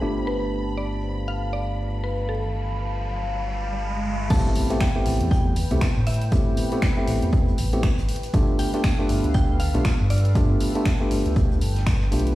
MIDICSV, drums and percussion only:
0, 0, Header, 1, 2, 480
1, 0, Start_track
1, 0, Key_signature, 0, "minor"
1, 0, Tempo, 504202
1, 257, Time_signature, 4, 2, 24, 8
1, 11757, End_track
2, 0, Start_track
2, 0, Title_t, "Drums"
2, 4095, Note_on_c, 9, 42, 81
2, 4096, Note_off_c, 9, 42, 0
2, 4096, Note_on_c, 9, 36, 126
2, 4096, Note_on_c, 9, 42, 68
2, 4096, Note_on_c, 9, 49, 108
2, 4191, Note_off_c, 9, 36, 0
2, 4191, Note_off_c, 9, 42, 0
2, 4191, Note_off_c, 9, 49, 0
2, 4336, Note_on_c, 9, 46, 105
2, 4339, Note_on_c, 9, 42, 67
2, 4431, Note_off_c, 9, 46, 0
2, 4434, Note_off_c, 9, 42, 0
2, 4477, Note_on_c, 9, 42, 57
2, 4483, Note_off_c, 9, 42, 0
2, 4483, Note_on_c, 9, 42, 45
2, 4572, Note_off_c, 9, 42, 0
2, 4572, Note_on_c, 9, 42, 90
2, 4573, Note_on_c, 9, 38, 126
2, 4574, Note_on_c, 9, 26, 127
2, 4575, Note_off_c, 9, 42, 0
2, 4575, Note_on_c, 9, 42, 69
2, 4576, Note_on_c, 9, 36, 108
2, 4668, Note_off_c, 9, 38, 0
2, 4669, Note_off_c, 9, 26, 0
2, 4671, Note_off_c, 9, 36, 0
2, 4671, Note_off_c, 9, 42, 0
2, 4814, Note_on_c, 9, 46, 96
2, 4823, Note_on_c, 9, 42, 80
2, 4909, Note_off_c, 9, 46, 0
2, 4918, Note_off_c, 9, 42, 0
2, 4957, Note_on_c, 9, 42, 56
2, 5052, Note_off_c, 9, 42, 0
2, 5056, Note_on_c, 9, 36, 121
2, 5065, Note_on_c, 9, 42, 92
2, 5151, Note_off_c, 9, 36, 0
2, 5160, Note_off_c, 9, 42, 0
2, 5295, Note_on_c, 9, 46, 103
2, 5296, Note_on_c, 9, 42, 65
2, 5391, Note_off_c, 9, 42, 0
2, 5391, Note_off_c, 9, 46, 0
2, 5437, Note_on_c, 9, 42, 55
2, 5532, Note_off_c, 9, 42, 0
2, 5534, Note_on_c, 9, 26, 126
2, 5535, Note_on_c, 9, 42, 82
2, 5536, Note_off_c, 9, 42, 0
2, 5536, Note_on_c, 9, 36, 106
2, 5536, Note_on_c, 9, 42, 74
2, 5538, Note_on_c, 9, 38, 112
2, 5630, Note_off_c, 9, 26, 0
2, 5631, Note_off_c, 9, 36, 0
2, 5631, Note_off_c, 9, 42, 0
2, 5634, Note_off_c, 9, 38, 0
2, 5772, Note_on_c, 9, 42, 67
2, 5775, Note_on_c, 9, 46, 93
2, 5846, Note_off_c, 9, 42, 0
2, 5846, Note_on_c, 9, 42, 68
2, 5870, Note_off_c, 9, 46, 0
2, 5917, Note_off_c, 9, 42, 0
2, 5917, Note_on_c, 9, 42, 56
2, 6012, Note_off_c, 9, 42, 0
2, 6015, Note_on_c, 9, 42, 67
2, 6016, Note_on_c, 9, 36, 126
2, 6021, Note_off_c, 9, 42, 0
2, 6021, Note_on_c, 9, 42, 88
2, 6111, Note_off_c, 9, 36, 0
2, 6116, Note_off_c, 9, 42, 0
2, 6255, Note_on_c, 9, 46, 113
2, 6260, Note_on_c, 9, 42, 69
2, 6351, Note_off_c, 9, 46, 0
2, 6355, Note_off_c, 9, 42, 0
2, 6396, Note_on_c, 9, 42, 54
2, 6491, Note_off_c, 9, 42, 0
2, 6494, Note_on_c, 9, 26, 127
2, 6495, Note_on_c, 9, 38, 121
2, 6495, Note_on_c, 9, 42, 71
2, 6496, Note_on_c, 9, 36, 109
2, 6497, Note_off_c, 9, 42, 0
2, 6497, Note_on_c, 9, 42, 95
2, 6589, Note_off_c, 9, 26, 0
2, 6591, Note_off_c, 9, 36, 0
2, 6591, Note_off_c, 9, 38, 0
2, 6592, Note_off_c, 9, 42, 0
2, 6735, Note_on_c, 9, 46, 100
2, 6744, Note_on_c, 9, 42, 69
2, 6831, Note_off_c, 9, 46, 0
2, 6839, Note_off_c, 9, 42, 0
2, 6878, Note_on_c, 9, 42, 53
2, 6973, Note_off_c, 9, 42, 0
2, 6976, Note_on_c, 9, 36, 127
2, 6979, Note_on_c, 9, 42, 82
2, 7071, Note_off_c, 9, 36, 0
2, 7074, Note_off_c, 9, 42, 0
2, 7119, Note_on_c, 9, 42, 49
2, 7214, Note_off_c, 9, 42, 0
2, 7214, Note_on_c, 9, 42, 80
2, 7217, Note_on_c, 9, 46, 114
2, 7310, Note_off_c, 9, 42, 0
2, 7312, Note_off_c, 9, 46, 0
2, 7359, Note_on_c, 9, 42, 53
2, 7454, Note_off_c, 9, 42, 0
2, 7456, Note_on_c, 9, 26, 127
2, 7456, Note_on_c, 9, 36, 109
2, 7457, Note_on_c, 9, 42, 69
2, 7458, Note_off_c, 9, 42, 0
2, 7458, Note_on_c, 9, 42, 66
2, 7551, Note_off_c, 9, 26, 0
2, 7551, Note_off_c, 9, 36, 0
2, 7553, Note_off_c, 9, 42, 0
2, 7596, Note_on_c, 9, 42, 81
2, 7691, Note_off_c, 9, 42, 0
2, 7697, Note_on_c, 9, 46, 100
2, 7768, Note_on_c, 9, 42, 66
2, 7792, Note_off_c, 9, 46, 0
2, 7838, Note_off_c, 9, 42, 0
2, 7838, Note_on_c, 9, 42, 56
2, 7839, Note_off_c, 9, 42, 0
2, 7839, Note_on_c, 9, 42, 61
2, 7934, Note_off_c, 9, 42, 0
2, 7936, Note_on_c, 9, 36, 127
2, 7936, Note_on_c, 9, 42, 88
2, 7937, Note_off_c, 9, 42, 0
2, 7937, Note_on_c, 9, 42, 68
2, 8031, Note_off_c, 9, 36, 0
2, 8032, Note_off_c, 9, 42, 0
2, 8177, Note_on_c, 9, 46, 114
2, 8178, Note_on_c, 9, 42, 69
2, 8272, Note_off_c, 9, 46, 0
2, 8273, Note_off_c, 9, 42, 0
2, 8319, Note_on_c, 9, 42, 52
2, 8320, Note_off_c, 9, 42, 0
2, 8320, Note_on_c, 9, 42, 44
2, 8413, Note_off_c, 9, 42, 0
2, 8413, Note_on_c, 9, 42, 98
2, 8414, Note_on_c, 9, 26, 125
2, 8416, Note_off_c, 9, 42, 0
2, 8416, Note_on_c, 9, 36, 116
2, 8416, Note_on_c, 9, 42, 68
2, 8418, Note_on_c, 9, 38, 125
2, 8510, Note_off_c, 9, 26, 0
2, 8511, Note_off_c, 9, 36, 0
2, 8511, Note_off_c, 9, 42, 0
2, 8513, Note_off_c, 9, 38, 0
2, 8656, Note_on_c, 9, 46, 100
2, 8658, Note_on_c, 9, 42, 66
2, 8751, Note_off_c, 9, 46, 0
2, 8753, Note_off_c, 9, 42, 0
2, 8799, Note_on_c, 9, 42, 52
2, 8891, Note_off_c, 9, 42, 0
2, 8891, Note_on_c, 9, 42, 87
2, 8896, Note_on_c, 9, 36, 127
2, 8986, Note_off_c, 9, 42, 0
2, 8991, Note_off_c, 9, 36, 0
2, 9137, Note_on_c, 9, 46, 108
2, 9140, Note_on_c, 9, 42, 68
2, 9232, Note_off_c, 9, 46, 0
2, 9235, Note_off_c, 9, 42, 0
2, 9279, Note_on_c, 9, 42, 52
2, 9374, Note_off_c, 9, 42, 0
2, 9375, Note_on_c, 9, 26, 122
2, 9376, Note_on_c, 9, 36, 112
2, 9377, Note_on_c, 9, 42, 64
2, 9378, Note_off_c, 9, 42, 0
2, 9378, Note_on_c, 9, 42, 84
2, 9379, Note_on_c, 9, 38, 125
2, 9470, Note_off_c, 9, 26, 0
2, 9471, Note_off_c, 9, 36, 0
2, 9473, Note_off_c, 9, 42, 0
2, 9474, Note_off_c, 9, 38, 0
2, 9615, Note_on_c, 9, 42, 62
2, 9616, Note_on_c, 9, 46, 100
2, 9688, Note_off_c, 9, 42, 0
2, 9688, Note_on_c, 9, 42, 66
2, 9711, Note_off_c, 9, 46, 0
2, 9758, Note_off_c, 9, 42, 0
2, 9758, Note_on_c, 9, 42, 53
2, 9853, Note_off_c, 9, 42, 0
2, 9856, Note_on_c, 9, 36, 127
2, 9856, Note_on_c, 9, 42, 62
2, 9857, Note_off_c, 9, 42, 0
2, 9857, Note_on_c, 9, 42, 85
2, 9951, Note_off_c, 9, 36, 0
2, 9952, Note_off_c, 9, 42, 0
2, 10096, Note_on_c, 9, 46, 115
2, 10108, Note_on_c, 9, 42, 67
2, 10191, Note_off_c, 9, 46, 0
2, 10203, Note_off_c, 9, 42, 0
2, 10237, Note_on_c, 9, 42, 51
2, 10332, Note_off_c, 9, 42, 0
2, 10334, Note_on_c, 9, 26, 122
2, 10335, Note_on_c, 9, 38, 106
2, 10336, Note_on_c, 9, 36, 115
2, 10336, Note_on_c, 9, 42, 77
2, 10430, Note_off_c, 9, 26, 0
2, 10430, Note_off_c, 9, 38, 0
2, 10431, Note_off_c, 9, 36, 0
2, 10431, Note_off_c, 9, 42, 0
2, 10576, Note_on_c, 9, 46, 105
2, 10580, Note_on_c, 9, 42, 74
2, 10671, Note_off_c, 9, 46, 0
2, 10675, Note_off_c, 9, 42, 0
2, 10717, Note_on_c, 9, 42, 51
2, 10813, Note_off_c, 9, 42, 0
2, 10816, Note_on_c, 9, 36, 127
2, 10817, Note_on_c, 9, 42, 100
2, 10911, Note_off_c, 9, 36, 0
2, 10912, Note_off_c, 9, 42, 0
2, 10961, Note_on_c, 9, 42, 44
2, 11055, Note_off_c, 9, 42, 0
2, 11055, Note_on_c, 9, 42, 67
2, 11056, Note_on_c, 9, 46, 105
2, 11151, Note_off_c, 9, 42, 0
2, 11151, Note_off_c, 9, 46, 0
2, 11198, Note_on_c, 9, 42, 51
2, 11200, Note_on_c, 9, 38, 39
2, 11293, Note_off_c, 9, 38, 0
2, 11293, Note_off_c, 9, 42, 0
2, 11293, Note_on_c, 9, 38, 110
2, 11295, Note_on_c, 9, 26, 126
2, 11296, Note_on_c, 9, 36, 112
2, 11297, Note_on_c, 9, 42, 66
2, 11299, Note_off_c, 9, 42, 0
2, 11299, Note_on_c, 9, 42, 90
2, 11388, Note_off_c, 9, 38, 0
2, 11390, Note_off_c, 9, 26, 0
2, 11391, Note_off_c, 9, 36, 0
2, 11395, Note_off_c, 9, 42, 0
2, 11434, Note_on_c, 9, 38, 46
2, 11529, Note_off_c, 9, 38, 0
2, 11535, Note_on_c, 9, 42, 65
2, 11537, Note_on_c, 9, 46, 98
2, 11608, Note_off_c, 9, 42, 0
2, 11608, Note_on_c, 9, 42, 62
2, 11632, Note_off_c, 9, 46, 0
2, 11679, Note_off_c, 9, 42, 0
2, 11679, Note_on_c, 9, 42, 53
2, 11757, Note_off_c, 9, 42, 0
2, 11757, End_track
0, 0, End_of_file